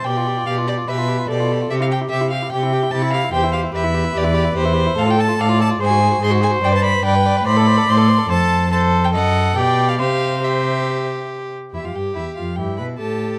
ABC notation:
X:1
M:4/4
L:1/16
Q:1/4=145
K:C
V:1 name="Violin"
g4 f2 d2 e4 d4 | e f g2 e2 f2 g4 a2 f2 | g2 f2 e4 d4 c4 | f g a2 f2 a2 _a4 c'2 a2 |
g a b2 g4 b4 c'4 | a4 a3 g ^f4 g3 =f | f4 e8 z4 | e f g2 e2 f2 g2 b2 a4 |]
V:2 name="Viola"
d8 B4 A4 | G8 G4 E4 | c4 B12 | A4 d4 c4 c4- |
c4 B4 d8 | c4 c4 ^d4 =d4 | c12- c2 z2 | E F G2 E2 F2 G2 B2 A4 |]
V:3 name="Violin"
G F G F G F G F G F G F G F G F | G E G E G E G E G E G E G E G E | G E G E G E G E G E G E G E G E | A F A F A F A F _A _G A G A G A G |
d B d B d B d B c A c A c A c A | A4 A4 A4 G4 | G4 G8- G2 z2 | G8 E4 G4 |]
V:4 name="Cello" clef=bass
B,,4 B,,4 B,,4 B,,4 | C,4 C,4 C,4 C,4 | E,,4 E,,4 E,,4 E,,4 | A,,4 A,,4 _A,,4 A,,4 |
G,,4 G,,4 A,,4 A,,4 | F,,8 ^F,,4 B,,4 | C,12- C,2 z2 | E,, F,, G,,2 E,,2 F,,2 G,,2 B,,2 A,,4 |]